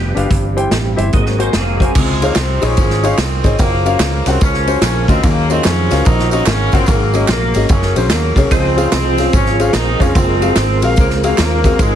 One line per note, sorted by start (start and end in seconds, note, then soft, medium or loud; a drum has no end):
0.00 0.12 F1 loud
0.00 0.12 G2 medium
0.00 0.29 F3 medium
0.00 0.28 B3 medium
0.00 0.29 B3 medium
0.00 0.28 D4 medium
0.00 0.28 G4 medium
0.00 1.11 G4 medium
0.15 0.28 F#1 medium
0.15 0.25 D4 medium
0.15 0.25 G4 medium
0.15 0.25 B4 medium
0.15 0.26 F5 medium
0.15 closed hi-hat medium
0.29 0.65 G1 medium
0.29 0.94 G2 medium
0.29 1.12 E3 medium
0.29 1.12 G3 medium
0.29 1.94 C4 medium
0.29 kick medium
0.29 closed hi-hat medium
0.56 0.66 E4 medium
0.56 0.66 G4 medium
0.56 0.67 C5 medium
0.56 0.67 G5 medium
0.56 closed hi-hat medium
0.71 0.94 A1 medium
0.71 snare loud
0.71 closed hi-hat medium
0.96 1.10 G1 medium
0.96 1.07 E4 medium
0.96 1.07 G4 medium
0.96 1.07 C5 medium
0.96 1.07 E5 medium
0.96 closed hi-hat medium
1.12 1.48 G#1 medium
1.12 1.76 G#2 medium
1.12 1.94 F#3 medium
1.12 1.94 A#3 medium
1.12 1.38 F#4 soft
1.12 1.94 G#4 medium
1.12 1.38 D#5 soft
1.12 kick loud
1.12 closed hi-hat medium
1.26 snare soft
1.39 1.54 D#4 medium
1.39 1.49 F#4 medium
1.39 1.49 A#4 medium
1.39 1.49 C5 medium
1.39 1.54 C5 medium
1.39 1.49 G#5 medium
1.39 closed hi-hat medium
1.53 1.89 F1 medium
1.53 1.93 D#3 medium
1.53 1.93 F#3 medium
1.53 1.93 A#3 medium
1.53 1.94 C4 medium
1.53 1.94 G#4 medium
1.53 snare loud
1.53 closed hi-hat medium
1.80 1.90 F#4 medium
1.80 1.90 A#4 medium
1.80 1.90 C5 medium
1.80 1.91 G#5 medium
1.80 kick medium
1.80 closed hi-hat medium
1.95 2.30 C#2 loud
1.95 2.59 C3 medium
1.95 2.38 C3 medium
1.95 2.63 F3 medium
1.95 2.23 G#3 medium
1.95 kick loud
1.95 crash loud
1.95 tambourine medium
2.22 2.37 A#3 loud
2.22 2.31 D#4 medium
2.22 2.32 G#4 medium
2.22 2.32 C5 medium
2.22 2.32 C#5 medium
2.22 2.32 F5 medium
2.22 ride medium
2.22 tambourine medium
2.36 2.58 C2 loud
2.36 2.63 C3 medium
2.36 2.63 C4 loud
2.36 snare loud
2.36 clap loud
2.36 ride medium
2.36 tambourine loud
2.61 2.79 A#1 medium
2.61 3.19 C#3 medium
2.61 3.18 F3 medium
2.61 3.41 G#3 medium
2.61 3.19 C#4 loud
2.61 2.72 D#4 medium
2.61 2.72 G#4 medium
2.61 2.72 C5 medium
2.61 2.72 C#5 medium
2.61 2.73 G#5 medium
2.61 ride medium
2.61 tambourine medium
2.77 3.12 G#1 medium
2.77 kick loud
2.77 ride medium
2.77 tambourine medium
2.90 snare soft
3.03 3.13 D#4 medium
3.03 3.13 G#4 medium
3.03 3.13 C5 medium
3.03 3.14 C#5 medium
3.03 3.14 F5 medium
3.03 ride medium
3.03 tambourine medium
3.18 3.41 C2 medium
3.18 3.57 D#3 medium
3.18 3.57 F3 medium
3.18 3.60 C4 loud
3.18 snare loud
3.18 clap loud
3.18 ride medium
3.18 tambourine loud
3.44 3.57 G#1 loud
3.44 3.54 D#4 medium
3.44 3.54 G#4 medium
3.44 3.54 C5 medium
3.44 3.54 C#5 medium
3.44 3.55 D#5 medium
3.44 kick loud
3.44 ride medium
3.44 tambourine medium
3.59 3.94 F#1 loud
3.59 4.37 C#3 medium
3.59 4.37 F3 medium
3.59 3.98 A#3 loud
3.59 kick loud
3.59 ride medium
3.59 tambourine medium
3.85 3.95 C#4 medium
3.85 3.95 F4 medium
3.85 3.96 F#4 medium
3.85 3.96 A#4 medium
3.85 3.96 F5 medium
3.85 ride medium
3.85 tambourine medium
4.00 4.22 C#2 loud
4.00 4.25 A#3 medium
4.00 snare loud
4.00 clap loud
4.00 ride medium
4.00 tambourine loud
4.26 4.39 C2 medium
4.26 4.42 C3 medium
4.26 4.42 C4 loud
4.26 4.36 C#4 medium
4.26 4.36 F4 medium
4.26 4.36 F#4 medium
4.26 4.37 A#4 medium
4.26 4.37 F#5 medium
4.26 snare soft
4.26 ride medium
4.26 tambourine medium
4.41 4.76 C#2 loud
4.41 4.81 C#3 loud
4.41 5.19 F3 medium
4.41 5.20 A#3 medium
4.41 4.81 C#4 loud
4.41 kick loud
4.41 ride medium
4.41 tambourine medium
4.54 snare soft
4.67 4.77 C#4 medium
4.67 4.77 F4 medium
4.67 4.77 F#4 medium
4.67 4.78 A#4 medium
4.67 4.78 C5 medium
4.67 ride medium
4.67 tambourine medium
4.82 5.04 A#1 loud
4.82 5.07 C#3 loud
4.82 5.07 C#4 loud
4.82 snare loud
4.82 clap loud
4.82 ride medium
4.82 tambourine loud
5.08 5.21 D2 loud
5.08 5.23 C4 loud
5.08 5.18 C#4 medium
5.08 5.18 F4 medium
5.08 5.18 F#4 medium
5.08 5.19 A#4 medium
5.08 5.19 D#5 medium
5.08 kick loud
5.08 ride medium
5.08 tambourine medium
5.23 5.58 D#2 loud
5.23 5.64 C#3 medium
5.23 5.87 D#3 medium
5.23 5.63 F#3 medium
5.23 5.50 A#3 loud
5.23 kick loud
5.23 ride medium
5.23 tambourine medium
5.49 5.64 C3 loud
5.49 5.64 C4 loud
5.49 5.59 C#4 medium
5.49 5.60 F4 medium
5.49 5.60 F#4 medium
5.49 5.60 A#4 medium
5.49 5.60 D#5 medium
5.49 ride medium
5.49 tambourine medium
5.64 5.87 F2 loud
5.64 6.05 C#3 loud
5.64 6.42 F3 medium
5.64 6.04 F#3 medium
5.64 6.05 C#4 loud
5.64 snare loud
5.64 clap loud
5.64 ride medium
5.64 tambourine loud
5.90 6.03 C#2 medium
5.90 6.00 C#4 medium
5.90 6.01 F4 medium
5.90 6.01 F#4 medium
5.90 6.01 A#4 medium
5.90 6.01 F5 medium
5.90 snare soft
5.90 ride medium
5.90 tambourine medium
6.05 6.41 A#1 loud
6.05 6.30 D#3 loud
6.05 6.83 F#3 medium
6.05 6.83 A#3 medium
6.05 6.30 D#4 loud
6.05 kick loud
6.05 ride medium
6.05 tambourine medium
6.19 snare soft
6.31 6.45 D#3 loud
6.31 6.42 C#4 medium
6.31 6.45 D#4 loud
6.31 6.42 F4 medium
6.31 6.42 F#4 medium
6.31 6.42 A#4 medium
6.31 6.42 D#5 medium
6.31 ride medium
6.31 tambourine medium
6.46 6.69 G#1 loud
6.46 6.73 C#3 loud
6.46 6.73 C#4 loud
6.46 snare loud
6.46 clap loud
6.46 ride medium
6.46 tambourine loud
6.72 6.85 G1 medium
6.72 6.88 C4 loud
6.72 6.82 C#4 medium
6.72 6.82 F4 medium
6.72 6.83 F#4 medium
6.72 6.83 A#4 medium
6.72 6.83 F#5 medium
6.72 kick loud
6.72 ride medium
6.72 tambourine medium
6.86 7.23 G#1 loud
6.86 7.51 G#2 medium
6.86 7.29 C#3 medium
6.86 7.28 F#3 medium
6.86 7.28 A#3 loud
6.86 kick loud
6.86 ride medium
6.86 tambourine medium
7.13 7.23 C#4 medium
7.13 7.24 F#4 medium
7.13 7.24 G#4 medium
7.13 7.24 A#4 medium
7.13 7.24 D#5 medium
7.13 ride medium
7.13 tambourine medium
7.28 7.51 A#1 medium
7.28 7.70 C#3 medium
7.28 7.69 F#3 medium
7.28 7.67 A#3 loud
7.28 snare loud
7.28 clap loud
7.28 ride medium
7.28 tambourine loud
7.54 7.67 G#1 medium
7.54 7.65 C#4 medium
7.54 7.65 F#4 medium
7.54 7.65 G#4 medium
7.54 7.65 A#4 medium
7.54 7.65 D#5 medium
7.54 ride medium
7.54 tambourine medium
7.69 7.92 F#1 loud
7.69 7.96 C#3 medium
7.69 8.10 F#3 medium
7.69 8.10 A#3 medium
7.69 7.96 C#4 loud
7.69 kick loud
7.69 ride medium
7.69 tambourine medium
7.82 snare soft
7.96 8.12 A#1 medium
7.96 8.05 C#4 medium
7.96 8.06 F#4 medium
7.96 8.06 G#4 medium
7.96 8.06 A#4 medium
7.96 8.06 C5 medium
7.96 ride medium
7.96 tambourine medium
8.10 8.34 D#2 loud
8.10 8.49 C#3 medium
8.10 8.49 F#3 medium
8.10 8.49 A#3 medium
8.10 snare loud
8.10 clap loud
8.10 ride medium
8.10 tambourine loud
8.36 8.49 C2 medium
8.36 8.47 C#4 medium
8.36 8.47 F#4 medium
8.36 8.47 G#4 medium
8.36 8.47 A#4 medium
8.36 8.47 C#5 medium
8.36 kick medium
8.36 ride medium
8.36 tambourine medium
8.51 8.86 C#2 loud
8.51 9.15 C#3 medium
8.51 10.14 F3 medium
8.51 8.91 F3 medium
8.51 8.91 G#3 medium
8.51 11.95 C4 medium
8.51 8.90 C4 loud
8.51 10.14 F4 medium
8.51 10.14 G#4 medium
8.51 kick loud
8.51 ride medium
8.51 tambourine medium
8.76 8.87 C#4 medium
8.76 8.87 F4 medium
8.76 8.87 G#4 medium
8.76 8.87 C5 medium
8.76 8.87 F5 medium
8.76 ride medium
8.76 tambourine medium
8.92 9.27 C2 medium
8.92 9.33 F3 medium
8.92 9.32 G#3 medium
8.92 9.30 C4 loud
8.92 snare loud
8.92 clap loud
8.92 ride medium
8.92 tambourine loud
9.18 9.28 C#4 medium
9.18 9.28 F4 medium
9.18 9.28 G#4 medium
9.18 9.29 C5 medium
9.18 9.29 F5 medium
9.18 snare soft
9.18 ride medium
9.18 tambourine medium
9.33 9.68 G#1 loud
9.33 9.59 C#3 loud
9.33 10.12 F3 medium
9.33 10.11 G#3 medium
9.33 9.59 C#4 loud
9.33 kick loud
9.33 ride medium
9.33 tambourine medium
9.46 snare soft
9.59 9.74 C#3 medium
9.59 9.69 C#4 medium
9.59 9.74 C#4 loud
9.59 9.69 F4 medium
9.59 9.69 G#4 medium
9.59 9.70 C5 medium
9.59 9.70 F5 medium
9.59 ride medium
9.59 tambourine medium
9.73 9.97 A#1 loud
9.73 10.00 D#3 loud
9.73 10.00 D#4 loud
9.73 snare loud
9.73 clap loud
9.73 ride medium
9.73 tambourine loud
9.99 10.13 F1 medium
9.99 10.16 C#3 medium
9.99 10.10 C#4 medium
9.99 10.16 C#4 loud
9.99 10.10 F4 medium
9.99 10.10 G#4 medium
9.99 10.10 C5 medium
9.99 10.11 F5 medium
9.99 kick medium
9.99 ride medium
9.99 tambourine soft
10.14 10.50 F#1 loud
10.14 10.81 F3 medium
10.14 10.81 G#3 medium
10.14 11.77 G#3 medium
10.14 10.81 C4 loud
10.14 11.95 F4 medium
10.14 11.78 A#4 medium
10.14 kick loud
10.14 ride medium
10.14 tambourine medium
10.41 10.51 C4 medium
10.41 10.51 F#4 medium
10.41 10.51 G#4 medium
10.41 10.51 A#4 medium
10.41 10.52 F5 medium
10.41 ride medium
10.41 tambourine medium
10.56 10.84 G#1 loud
10.56 snare loud
10.56 clap loud
10.56 ride medium
10.56 tambourine loud
10.82 10.96 A#1 medium
10.82 10.92 C4 medium
10.82 10.92 F#4 medium
10.82 10.93 G#4 medium
10.82 10.93 A#4 medium
10.82 10.93 F5 loud
10.82 ride medium
10.82 tambourine medium
10.96 11.32 C#2 medium
10.96 11.38 C#3 medium
10.96 11.38 F3 medium
10.96 11.10 A#3 medium
10.96 kick loud
10.96 ride medium
10.96 tambourine medium
11.10 snare soft
11.23 11.38 A#3 medium
11.23 11.33 C4 medium
11.23 11.34 F#4 medium
11.23 11.34 G#4 medium
11.23 11.34 A#4 medium
11.23 11.34 F5 medium
11.23 ride medium
11.23 tambourine medium
11.38 11.74 D#2 loud
11.38 11.77 C#3 medium
11.38 11.77 F3 medium
11.38 11.77 A#3 loud
11.38 snare loud
11.38 clap loud
11.38 ride medium
11.38 tambourine loud
11.64 11.74 C4 medium
11.64 11.75 F#4 medium
11.64 11.75 G#4 medium
11.64 11.75 A#4 medium
11.64 11.75 F5 medium
11.64 kick loud
11.64 ride medium
11.64 tambourine medium
11.78 11.95 G#1 loud
11.78 11.95 G#2 medium
11.78 11.95 C3 medium
11.78 11.95 D#3 medium
11.78 11.95 G#3 medium
11.78 11.95 G#3 loud
11.78 11.95 A#4 medium
11.78 kick loud
11.78 ride medium
11.78 tambourine medium